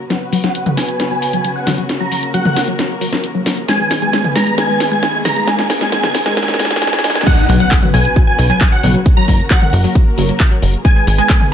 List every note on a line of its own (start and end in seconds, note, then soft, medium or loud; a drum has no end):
0.10 3.65 C#3 medium
0.10 0.14 F#3 medium
0.10 3.65 F#3 medium
0.10 1.87 B3 medium
0.10 3.65 F#4 medium
0.10 1.88 B4 medium
0.10 0.36 F#5 loud
0.10 snare soft
0.10 closed hi-hat medium
0.10 riser medium
0.10 shaker medium
0.22 shaker soft
0.32 0.39 F#3 loud
0.32 open hi-hat loud
0.32 shaker medium
0.43 0.48 F#3 medium
0.43 0.69 F#5 loud
0.43 snare soft
0.43 closed hi-hat medium
0.43 shaker soft
0.55 closed hi-hat medium
0.55 shaker medium
0.66 0.72 F#3 loud
0.66 closed hi-hat soft
0.66 mid tom medium
0.66 shaker soft
0.77 0.81 F#3 medium
0.77 1.03 G#5 medium
0.77 snare medium
0.77 open hi-hat loud
0.77 shaker medium
0.88 closed hi-hat medium
0.88 shaker soft
1.00 1.06 F#3 loud
1.00 snare medium
1.00 closed hi-hat medium
1.00 shaker medium
1.11 1.15 F#3 medium
1.11 1.28 G#5 medium
1.11 shaker soft
1.22 open hi-hat loud
1.22 shaker loud
1.33 1.40 F#3 loud
1.33 1.50 G#5 medium
1.33 closed hi-hat medium
1.33 shaker soft
1.44 1.49 F#3 medium
1.44 closed hi-hat medium
1.44 shaker medium
1.56 1.73 F#5 medium
1.56 shaker soft
1.67 1.73 F#3 loud
1.67 snare medium
1.67 open hi-hat loud
1.67 mid tom medium
1.67 shaker medium
1.78 1.82 F#3 medium
1.78 closed hi-hat medium
1.78 shaker soft
1.89 3.67 A#3 medium
1.89 3.67 A#4 medium
1.89 snare medium
1.89 closed hi-hat medium
1.89 shaker medium
2.00 2.07 F#3 loud
2.00 2.26 A#5 loud
2.00 shaker soft
2.12 2.16 F#3 medium
2.12 open hi-hat loud
2.12 shaker medium
2.23 closed hi-hat medium
2.23 shaker soft
2.34 2.40 F#3 loud
2.34 2.59 F#5 medium
2.34 closed hi-hat medium
2.34 shaker medium
2.45 2.49 F#3 medium
2.45 closed hi-hat soft
2.45 mid tom medium
2.45 shaker soft
2.56 snare medium
2.56 open hi-hat loud
2.56 shaker loud
2.68 2.74 F#3 loud
2.68 closed hi-hat medium
2.68 shaker soft
2.79 2.83 F#3 medium
2.79 snare medium
2.79 closed hi-hat medium
2.79 shaker medium
2.91 shaker soft
3.01 3.07 F#3 loud
3.01 open hi-hat loud
3.01 shaker loud
3.12 3.17 F#3 medium
3.12 snare medium
3.12 closed hi-hat medium
3.12 shaker soft
3.23 closed hi-hat medium
3.23 shaker soft
3.35 3.41 F#3 loud
3.35 shaker soft
3.46 3.50 F#3 medium
3.46 snare medium
3.46 open hi-hat loud
3.46 shaker medium
3.56 closed hi-hat medium
3.56 shaker soft
3.68 7.23 D#3 medium
3.68 3.75 G#3 medium
3.68 7.23 G#3 medium
3.68 5.46 B3 medium
3.68 7.23 G#4 medium
3.68 5.46 B4 medium
3.68 3.94 G#5 loud
3.68 snare medium
3.68 closed hi-hat medium
3.68 shaker medium
3.79 3.84 G#3 medium
3.79 shaker soft
3.90 snare medium
3.90 open hi-hat loud
3.90 shaker loud
4.02 4.08 G#3 medium
4.02 4.27 G#5 medium
4.02 closed hi-hat medium
4.02 shaker soft
4.13 4.17 G#3 medium
4.13 snare medium
4.13 closed hi-hat medium
4.13 shaker medium
4.24 closed hi-hat soft
4.24 mid tom medium
4.24 shaker soft
4.35 4.42 G#3 medium
4.35 4.56 A#5 medium
4.35 snare medium
4.35 open hi-hat loud
4.35 shaker medium
4.46 4.51 G#3 medium
4.46 closed hi-hat medium
4.46 shaker soft
4.58 4.64 G#3 loud
4.58 4.83 G#5 loud
4.58 snare medium
4.58 closed hi-hat medium
4.58 shaker medium
4.69 4.73 G#3 medium
4.69 shaker soft
4.80 snare medium
4.80 open hi-hat loud
4.80 shaker loud
4.91 4.98 G#3 loud
4.91 5.17 G#5 medium
4.91 closed hi-hat medium
4.91 shaker soft
5.03 5.07 G#3 medium
5.03 snare medium
5.03 closed hi-hat medium
5.03 shaker medium
5.14 shaker soft
5.25 5.31 G#3 medium
5.25 5.46 A#5 medium
5.25 snare medium
5.25 open hi-hat loud
5.25 mid tom medium
5.25 shaker loud
5.36 5.40 G#3 medium
5.36 closed hi-hat medium
5.36 shaker soft
5.47 5.54 G#3 loud
5.47 7.25 A#3 medium
5.47 7.25 A#4 medium
5.47 5.73 G#5 loud
5.47 snare medium
5.47 closed hi-hat medium
5.47 shaker medium
5.59 5.63 G#3 medium
5.59 snare medium
5.59 shaker soft
5.70 snare medium
5.70 open hi-hat loud
5.70 shaker loud
5.80 5.87 G#3 loud
5.80 5.90 G#5 medium
5.80 snare medium
5.80 closed hi-hat soft
5.80 shaker soft
5.92 5.98 G#3 loud
5.92 6.18 G#5 loud
5.92 snare medium
5.92 closed hi-hat medium
5.92 shaker medium
6.03 6.08 G#3 medium
6.03 snare medium
6.03 closed hi-hat soft
6.03 mid tom medium
6.03 shaker soft
6.15 snare loud
6.15 open hi-hat loud
6.15 shaker loud
6.26 6.32 G#3 loud
6.26 6.35 G#5 medium
6.26 snare medium
6.26 closed hi-hat soft
6.26 shaker soft
6.37 6.43 G#3 loud
6.37 6.58 G#5 loud
6.37 snare loud
6.37 closed hi-hat medium
6.37 shaker medium
6.43 snare medium
6.48 6.52 G#3 medium
6.48 snare medium
6.48 shaker soft
6.54 snare medium
6.59 6.66 G#3 loud
6.59 6.80 G#5 loud
6.59 snare loud
6.59 open hi-hat loud
6.59 shaker loud
6.65 snare loud
6.70 6.75 G#3 medium
6.70 snare loud
6.70 closed hi-hat medium
6.70 shaker soft
6.76 snare loud
6.82 6.88 G#3 loud
6.82 7.02 G#5 loud
6.82 snare loud
6.82 closed hi-hat medium
6.82 shaker medium
6.87 snare medium
6.93 6.97 G#3 medium
6.93 snare medium
6.93 closed hi-hat soft
6.93 shaker soft
6.99 snare medium
7.04 7.10 G#3 loud
7.04 7.25 G#5 loud
7.04 snare loud
7.04 open hi-hat loud
7.04 shaker loud
7.10 snare loud
7.15 7.20 G#3 medium
7.15 snare loud
7.15 closed hi-hat medium
7.15 shaker soft
7.21 snare loud
7.26 10.81 C#3 medium
7.26 7.31 F#3 medium
7.26 10.81 F#3 medium
7.26 9.04 B3 medium
7.26 10.81 F#4 medium
7.26 9.04 B4 medium
7.26 7.52 F#5 loud
7.26 kick loud
7.26 closed hi-hat medium
7.26 crash loud
7.26 impact medium
7.49 7.62 B1 loud
7.49 7.55 F#3 loud
7.49 open hi-hat loud
7.60 7.64 F#3 medium
7.60 7.86 F#5 loud
7.60 closed hi-hat medium
7.71 kick loud
7.71 clap loud
7.71 closed hi-hat medium
7.83 7.89 F#3 loud
7.83 closed hi-hat soft
7.83 mid tom medium
7.94 8.07 B1 loud
7.94 7.98 F#3 medium
7.94 8.19 G#5 loud
7.94 open hi-hat loud
8.05 closed hi-hat medium
8.16 8.22 F#3 loud
8.16 kick loud
8.16 closed hi-hat medium
8.27 8.31 F#3 medium
8.27 8.44 G#5 medium
8.39 8.52 B1 medium
8.39 open hi-hat loud
8.50 8.56 F#3 loud
8.50 8.67 G#5 medium
8.50 closed hi-hat medium
8.61 8.65 F#3 medium
8.61 kick loud
8.61 clap loud
8.61 closed hi-hat medium
8.72 8.89 F#5 medium
8.72 8.89 F#5 loud
8.83 8.97 B1 medium
8.83 8.90 F#3 loud
8.83 open hi-hat loud
8.83 mid tom medium
8.95 8.99 F#3 medium
8.95 closed hi-hat medium
9.06 10.83 A#3 medium
9.06 10.83 A#4 medium
9.06 kick loud
9.06 closed hi-hat medium
9.17 9.23 F#3 loud
9.17 9.42 A#5 loud
9.28 9.42 F#1 loud
9.28 9.32 F#3 medium
9.28 kick medium
9.28 open hi-hat loud
9.39 closed hi-hat medium
9.50 9.57 F#3 loud
9.50 9.76 F#5 medium
9.50 9.76 F#5 loud
9.50 kick loud
9.50 clap loud
9.50 closed hi-hat medium
9.62 9.66 F#3 medium
9.62 closed hi-hat soft
9.62 mid tom medium
9.73 9.86 F#1 loud
9.73 open hi-hat loud
9.84 9.90 F#3 loud
9.84 open hi-hat medium
9.95 9.99 F#3 medium
9.95 kick loud
9.95 closed hi-hat medium
10.18 10.31 F#1 medium
10.18 10.24 F#3 loud
10.18 open hi-hat loud
10.29 10.33 F#3 medium
10.29 closed hi-hat medium
10.40 kick loud
10.40 clap loud
10.40 closed hi-hat medium
10.51 10.57 F#3 loud
10.62 10.76 F#1 medium
10.62 10.67 F#3 medium
10.62 open hi-hat loud
10.74 closed hi-hat medium
10.85 11.54 D#3 medium
10.85 10.91 G#3 loud
10.85 11.54 G#3 medium
10.85 11.54 B3 medium
10.85 11.54 G#4 medium
10.85 11.54 B4 medium
10.85 11.10 G#5 loud
10.85 kick loud
10.85 closed hi-hat medium
10.96 11.00 G#3 medium
11.07 11.21 G#1 loud
11.07 open hi-hat loud
11.18 11.25 G#3 loud
11.18 11.44 G#5 loud
11.18 closed hi-hat medium
11.30 kick loud
11.30 clap loud
11.30 closed hi-hat medium
11.41 closed hi-hat soft
11.41 mid tom medium